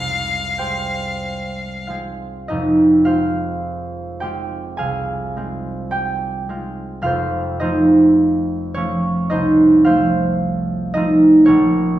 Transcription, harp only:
0.00 2.56 C2 soft
0.00 1.30 F2 soft
0.00 0.59 G#3 soft
0.00 0.60 C4 soft
0.00 0.60 G#4 soft
0.58 1.88 G#3 soft
0.58 1.89 C4 soft
0.58 2.55 G4 soft
0.58 1.89 G#4 soft
0.58 3.05 C5 soft
0.58 2.54 G5 medium
1.87 3.07 G#3 soft
1.87 3.07 C4 soft
1.87 3.05 F4 soft
1.87 4.77 G#4 soft
1.87 2.90 F5 soft
2.48 6.40 F1 soft
2.48 6.41 F2 soft
2.48 6.40 D#4 soft
2.48 3.48 D#5 medium
3.05 4.22 G#3 soft
3.05 4.22 C4 soft
3.05 4.22 F4 medium
3.05 6.97 C5 medium
3.05 4.77 F5 medium
4.20 5.35 G#3 soft
4.20 5.36 C4 soft
4.20 5.36 F4 soft
4.20 5.91 G4 medium
4.20 5.18 G5 medium
4.77 7.10 C2 soft
4.77 7.10 G#4 medium
4.77 7.01 F5 medium
4.77 7.09 G#5 medium
5.37 6.48 G#3 soft
5.37 6.48 C4 soft
5.37 6.48 F4 soft
5.91 7.10 G4 medium
5.91 7.85 G5 medium
6.49 7.10 G#3 soft
6.49 10.39 C4 soft
6.49 7.02 F4 soft
7.01 10.91 F1 soft
7.01 10.95 F2 soft
7.01 7.62 F4 medium
7.01 9.83 F5 medium
7.06 7.60 C5 medium
7.60 8.75 F3 soft
7.60 8.76 A3 soft
7.60 9.30 D#4 medium
7.60 8.76 F4 soft
7.60 9.30 C5 medium
7.60 9.29 D#5 medium
8.74 9.86 F3 soft
8.74 9.86 A3 soft
8.74 11.45 C#4 medium
8.74 9.84 F4 soft
8.74 9.70 C#5 medium
9.30 11.54 C2 soft
9.30 10.94 D#4 medium
9.30 9.85 C5 medium
9.30 10.93 D#5 medium
9.85 10.95 F3 soft
9.85 10.95 A3 soft
9.85 10.96 F4 medium
9.85 11.53 C5 medium
9.85 11.99 F5 medium
10.94 11.99 F3 soft
10.94 11.54 A3 soft
10.94 11.53 D#4 medium
10.94 11.99 F4 soft
10.94 11.53 D#5 medium
11.46 11.99 A#1 medium
11.46 11.99 C#4 medium
11.46 11.99 A#4 medium
11.46 11.99 C#5 medium

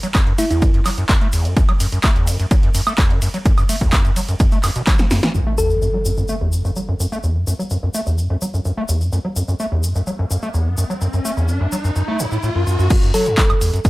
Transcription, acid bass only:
0.03 0.07 F#3 medium
0.15 0.21 F#2 medium
0.27 0.33 F#2 medium
0.38 0.45 A3 loud
0.50 0.63 E2 medium
0.62 0.72 F#2 medium
0.74 0.80 F#2 medium
0.86 0.90 F#3 medium
0.98 1.04 F#2 medium
1.09 1.16 F#2 medium
1.22 1.28 A3 loud
1.33 1.47 E2 medium
1.45 1.55 F#2 medium
1.57 1.63 F#2 medium
1.69 1.73 F#3 medium
1.80 1.87 F#2 medium
1.92 1.99 F#2 medium
2.04 2.11 A3 loud
2.16 2.29 E2 medium
2.28 2.38 F#2 medium
2.40 2.46 F#2 medium
2.51 2.55 F#3 medium
2.63 2.70 F#2 medium
2.75 2.81 F#2 medium
2.87 2.93 A3 loud
2.98 3.12 E2 medium
3.10 3.20 F#2 medium
3.22 3.29 F#2 medium
3.34 3.38 F#3 medium
3.46 3.52 F#2 medium
3.58 3.64 F#2 medium
3.69 3.76 A3 loud
3.81 3.94 E2 medium
3.93 4.03 F#2 medium
4.05 4.11 F#2 medium
4.16 4.20 F#3 medium
4.29 4.35 F#2 medium
4.40 4.47 F#2 medium
4.52 4.58 A3 loud
4.64 4.70 F#2 medium
4.76 4.82 B2 loud
4.87 4.97 F#3 medium
4.99 5.06 F#3 medium
5.11 5.21 F#2 loud
5.23 5.29 E3 loud
5.34 5.41 F#2 medium
5.47 5.53 A3 loud
5.58 5.72 E2 medium
5.70 5.80 F#2 medium
5.82 5.88 F#2 medium
5.94 5.98 F#3 medium
6.05 6.12 F#2 medium
6.18 6.24 F#2 medium
6.29 6.36 A3 loud
6.41 6.54 E2 medium
6.53 6.63 F#2 medium
6.65 6.71 F#2 medium
6.76 6.80 F#3 medium
6.88 6.95 F#2 medium
7.00 7.07 F#2 medium
7.12 7.18 A3 loud
7.24 7.37 E2 medium
7.36 7.45 F#2 medium
7.47 7.54 F#2 medium
7.59 7.63 F#3 medium
7.71 7.77 F#2 medium
7.83 7.89 F#2 medium
7.94 8.01 A3 loud
8.07 8.20 E2 medium
8.18 8.28 F#2 medium
8.30 8.36 F#2 medium
8.42 8.46 F#3 medium
8.54 8.60 F#2 medium
8.65 8.72 F#2 medium
8.77 8.84 A3 loud
8.89 9.03 E2 medium
9.01 9.10 F#2 medium
9.12 9.19 F#2 medium
9.25 9.28 F#3 medium
9.36 9.43 F#2 medium
9.48 9.55 F#2 medium
9.60 9.66 A3 loud
9.72 9.85 E2 medium
9.83 9.93 F#2 medium
9.96 10.02 F#2 medium
10.07 10.11 F#3 medium
10.19 10.25 F#2 medium
10.31 10.37 F#2 medium
10.43 10.49 A3 loud
10.54 10.68 E2 medium
10.66 10.76 F#2 medium
10.78 10.84 F#2 medium
10.90 10.94 F#3 medium
11.01 11.08 F#2 medium
11.14 11.20 F#2 medium
11.25 11.32 A3 loud
11.37 11.50 E2 medium
11.49 11.59 F#2 medium
11.61 11.67 F#2 medium
11.72 11.76 F#3 medium
11.84 11.91 F#2 medium
11.96 12.03 F#2 medium
12.08 12.21 A3 loud
12.20 12.26 F#2 medium
12.32 12.38 A2 medium
12.43 12.50 A2 medium
12.55 12.65 F#2 medium
12.67 12.77 F#2 medium
12.79 12.88 F#2 loud
13.03 13.12 F#2 medium
13.14 13.28 F#3 loud
13.26 13.36 F#2 medium
13.38 13.44 F#3 medium
13.50 13.54 F#2 medium
13.61 13.71 E2 medium
13.73 13.80 F#2 medium
13.85 13.90 F#2 medium

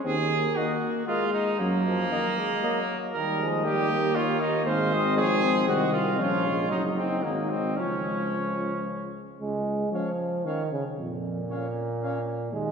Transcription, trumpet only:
0.05 0.57 G#4 medium
0.56 1.07 F#4 medium
1.07 1.33 F4 medium
1.33 1.59 D#4 medium
1.60 2.97 A#3 medium
3.14 3.47 A#4 medium
3.65 4.17 G4 medium
4.15 4.42 F4 medium
4.40 4.65 D#4 medium
4.65 5.16 C5 medium
5.17 5.67 G#4 medium
5.68 5.92 F#4 medium
5.93 6.19 F4 medium
6.19 6.70 F4 medium
6.71 6.83 D#4 medium
6.97 7.25 C4 medium
7.23 7.51 A#3 medium
7.50 7.78 C4 medium
7.76 8.87 C#4 medium
9.94 10.10 C#5 soft
10.46 10.62 C#5 soft
11.50 11.66 C#5 soft
12.04 12.20 C#5 soft

